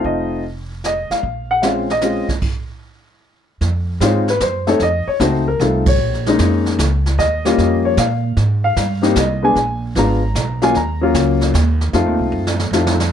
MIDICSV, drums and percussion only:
0, 0, Header, 1, 2, 480
1, 0, Start_track
1, 0, Key_signature, -5, "minor"
1, 0, Tempo, 396563
1, 51, Time_signature, 3, 2, 24, 8
1, 15882, End_track
2, 0, Start_track
2, 0, Title_t, "Drums"
2, 54, Note_on_c, 9, 25, 35
2, 54, Note_on_c, 9, 36, 25
2, 175, Note_off_c, 9, 36, 0
2, 1016, Note_on_c, 9, 44, 47
2, 1018, Note_on_c, 9, 38, 47
2, 1137, Note_off_c, 9, 44, 0
2, 1139, Note_off_c, 9, 38, 0
2, 1341, Note_on_c, 9, 38, 32
2, 1462, Note_off_c, 9, 38, 0
2, 1492, Note_on_c, 9, 36, 28
2, 1496, Note_off_c, 9, 25, 0
2, 1496, Note_on_c, 9, 25, 45
2, 1613, Note_off_c, 9, 36, 0
2, 1969, Note_on_c, 9, 44, 44
2, 1970, Note_on_c, 9, 38, 48
2, 2090, Note_off_c, 9, 44, 0
2, 2091, Note_off_c, 9, 38, 0
2, 2298, Note_on_c, 9, 38, 30
2, 2419, Note_off_c, 9, 38, 0
2, 2439, Note_on_c, 9, 44, 49
2, 2440, Note_on_c, 9, 38, 50
2, 2560, Note_off_c, 9, 44, 0
2, 2561, Note_off_c, 9, 38, 0
2, 2769, Note_on_c, 9, 36, 41
2, 2772, Note_on_c, 9, 38, 31
2, 2890, Note_off_c, 9, 36, 0
2, 2893, Note_off_c, 9, 38, 0
2, 2925, Note_on_c, 9, 49, 51
2, 2930, Note_on_c, 9, 36, 59
2, 3046, Note_off_c, 9, 49, 0
2, 3051, Note_off_c, 9, 36, 0
2, 4371, Note_on_c, 9, 36, 18
2, 4373, Note_off_c, 9, 25, 0
2, 4373, Note_on_c, 9, 25, 48
2, 4373, Note_on_c, 9, 38, 38
2, 4492, Note_off_c, 9, 36, 0
2, 4494, Note_off_c, 9, 38, 0
2, 4851, Note_on_c, 9, 36, 23
2, 4853, Note_on_c, 9, 44, 49
2, 4854, Note_on_c, 9, 38, 58
2, 4972, Note_off_c, 9, 36, 0
2, 4974, Note_off_c, 9, 44, 0
2, 4975, Note_off_c, 9, 38, 0
2, 5177, Note_on_c, 9, 38, 33
2, 5298, Note_off_c, 9, 38, 0
2, 5330, Note_on_c, 9, 44, 46
2, 5331, Note_on_c, 9, 38, 55
2, 5333, Note_on_c, 9, 36, 18
2, 5451, Note_off_c, 9, 44, 0
2, 5452, Note_off_c, 9, 38, 0
2, 5454, Note_off_c, 9, 36, 0
2, 5652, Note_on_c, 9, 38, 36
2, 5773, Note_off_c, 9, 38, 0
2, 5805, Note_off_c, 9, 25, 0
2, 5805, Note_on_c, 9, 25, 47
2, 5805, Note_on_c, 9, 38, 39
2, 5810, Note_on_c, 9, 36, 17
2, 5926, Note_off_c, 9, 38, 0
2, 5931, Note_off_c, 9, 36, 0
2, 6293, Note_on_c, 9, 36, 20
2, 6295, Note_on_c, 9, 44, 53
2, 6297, Note_on_c, 9, 38, 54
2, 6414, Note_off_c, 9, 36, 0
2, 6416, Note_off_c, 9, 44, 0
2, 6418, Note_off_c, 9, 38, 0
2, 6777, Note_on_c, 9, 36, 17
2, 6779, Note_on_c, 9, 38, 42
2, 6898, Note_off_c, 9, 36, 0
2, 6900, Note_off_c, 9, 38, 0
2, 7092, Note_on_c, 9, 51, 67
2, 7098, Note_on_c, 9, 36, 82
2, 7213, Note_off_c, 9, 51, 0
2, 7219, Note_off_c, 9, 36, 0
2, 7261, Note_off_c, 9, 25, 0
2, 7261, Note_on_c, 9, 25, 45
2, 7432, Note_on_c, 9, 38, 28
2, 7554, Note_off_c, 9, 38, 0
2, 7581, Note_on_c, 9, 38, 46
2, 7702, Note_off_c, 9, 38, 0
2, 7730, Note_on_c, 9, 44, 60
2, 7732, Note_on_c, 9, 38, 55
2, 7736, Note_on_c, 9, 36, 20
2, 7852, Note_off_c, 9, 44, 0
2, 7853, Note_off_c, 9, 38, 0
2, 7857, Note_off_c, 9, 36, 0
2, 8057, Note_on_c, 9, 38, 34
2, 8178, Note_off_c, 9, 38, 0
2, 8218, Note_on_c, 9, 44, 53
2, 8220, Note_on_c, 9, 36, 20
2, 8220, Note_on_c, 9, 38, 58
2, 8339, Note_off_c, 9, 44, 0
2, 8341, Note_off_c, 9, 36, 0
2, 8341, Note_off_c, 9, 38, 0
2, 8544, Note_on_c, 9, 38, 37
2, 8665, Note_off_c, 9, 38, 0
2, 8697, Note_on_c, 9, 36, 21
2, 8704, Note_off_c, 9, 25, 0
2, 8704, Note_on_c, 9, 25, 41
2, 8704, Note_on_c, 9, 38, 43
2, 8818, Note_off_c, 9, 36, 0
2, 8825, Note_off_c, 9, 38, 0
2, 9021, Note_on_c, 9, 38, 48
2, 9142, Note_off_c, 9, 38, 0
2, 9178, Note_on_c, 9, 36, 20
2, 9181, Note_on_c, 9, 38, 40
2, 9299, Note_off_c, 9, 36, 0
2, 9302, Note_off_c, 9, 38, 0
2, 9649, Note_on_c, 9, 44, 53
2, 9650, Note_on_c, 9, 38, 58
2, 9652, Note_on_c, 9, 36, 20
2, 9770, Note_off_c, 9, 44, 0
2, 9771, Note_off_c, 9, 38, 0
2, 9773, Note_off_c, 9, 36, 0
2, 10127, Note_off_c, 9, 25, 0
2, 10127, Note_on_c, 9, 25, 43
2, 10127, Note_on_c, 9, 38, 40
2, 10130, Note_on_c, 9, 36, 20
2, 10248, Note_off_c, 9, 38, 0
2, 10251, Note_off_c, 9, 36, 0
2, 10608, Note_on_c, 9, 36, 24
2, 10609, Note_on_c, 9, 44, 51
2, 10610, Note_on_c, 9, 38, 54
2, 10729, Note_off_c, 9, 36, 0
2, 10730, Note_off_c, 9, 44, 0
2, 10731, Note_off_c, 9, 38, 0
2, 10931, Note_on_c, 9, 38, 35
2, 11052, Note_off_c, 9, 38, 0
2, 11083, Note_on_c, 9, 44, 63
2, 11084, Note_on_c, 9, 38, 62
2, 11087, Note_on_c, 9, 36, 23
2, 11204, Note_off_c, 9, 44, 0
2, 11205, Note_off_c, 9, 38, 0
2, 11208, Note_off_c, 9, 36, 0
2, 11569, Note_on_c, 9, 36, 24
2, 11573, Note_off_c, 9, 25, 0
2, 11573, Note_on_c, 9, 25, 49
2, 11573, Note_on_c, 9, 38, 39
2, 11690, Note_off_c, 9, 36, 0
2, 11694, Note_off_c, 9, 38, 0
2, 12049, Note_on_c, 9, 36, 21
2, 12051, Note_on_c, 9, 38, 40
2, 12170, Note_off_c, 9, 36, 0
2, 12172, Note_off_c, 9, 38, 0
2, 12529, Note_on_c, 9, 36, 26
2, 12532, Note_on_c, 9, 44, 54
2, 12534, Note_on_c, 9, 38, 64
2, 12650, Note_off_c, 9, 36, 0
2, 12654, Note_off_c, 9, 44, 0
2, 12655, Note_off_c, 9, 38, 0
2, 12851, Note_on_c, 9, 38, 37
2, 12972, Note_off_c, 9, 38, 0
2, 13008, Note_off_c, 9, 25, 0
2, 13008, Note_on_c, 9, 25, 51
2, 13008, Note_on_c, 9, 36, 21
2, 13008, Note_on_c, 9, 38, 39
2, 13129, Note_off_c, 9, 36, 0
2, 13129, Note_off_c, 9, 38, 0
2, 13488, Note_on_c, 9, 44, 56
2, 13489, Note_on_c, 9, 36, 24
2, 13490, Note_on_c, 9, 38, 59
2, 13609, Note_off_c, 9, 44, 0
2, 13610, Note_off_c, 9, 36, 0
2, 13611, Note_off_c, 9, 38, 0
2, 13811, Note_on_c, 9, 38, 37
2, 13932, Note_off_c, 9, 38, 0
2, 13970, Note_on_c, 9, 36, 25
2, 13973, Note_on_c, 9, 44, 58
2, 13974, Note_on_c, 9, 38, 62
2, 14091, Note_off_c, 9, 36, 0
2, 14094, Note_off_c, 9, 44, 0
2, 14095, Note_off_c, 9, 38, 0
2, 14293, Note_on_c, 9, 38, 38
2, 14414, Note_off_c, 9, 38, 0
2, 14443, Note_off_c, 9, 25, 0
2, 14443, Note_on_c, 9, 25, 47
2, 14443, Note_on_c, 9, 38, 39
2, 14447, Note_on_c, 9, 36, 21
2, 14564, Note_off_c, 9, 38, 0
2, 14568, Note_off_c, 9, 36, 0
2, 15091, Note_on_c, 9, 38, 52
2, 15212, Note_off_c, 9, 38, 0
2, 15243, Note_on_c, 9, 38, 63
2, 15364, Note_off_c, 9, 38, 0
2, 15408, Note_on_c, 9, 44, 57
2, 15409, Note_on_c, 9, 38, 64
2, 15529, Note_off_c, 9, 44, 0
2, 15530, Note_off_c, 9, 38, 0
2, 15574, Note_on_c, 9, 38, 73
2, 15695, Note_off_c, 9, 38, 0
2, 15734, Note_on_c, 9, 38, 78
2, 15855, Note_off_c, 9, 38, 0
2, 15882, Note_off_c, 9, 25, 0
2, 15882, End_track
0, 0, End_of_file